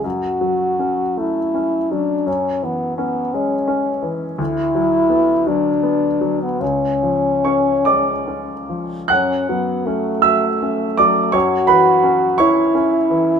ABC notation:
X:1
M:6/8
L:1/16
Q:3/8=54
K:F#m
V:1 name="French horn"
F6 E4 D2 | C2 B,2 B,2 C4 z2 | E6 D4- D B, | C8- C2 z2 |
C2 B,2 A,8 | F6 E6 |]
V:2 name="Grand piano"
z12 | z12 | z12 | z4 [cc']2 [dd']6 |
[ff']6 [ee']4 [dd']2 | [cc']2 [Bb]4 [cc']2 z4 |]
V:3 name="Grand piano" clef=bass
F,,2 F,2 C2 A,2 C2 F,2 | F,,2 E,2 C2 G,2 C2 E,2 | D,,2 F,2 B,2 F,2 B,2 F,2 | C,,2 ^E,2 C2 G,2 C2 E,2 |
F,,2 F,2 C2 F2 C2 F,2 | F,,2 E,2 C2 E2 C2 E,2 |]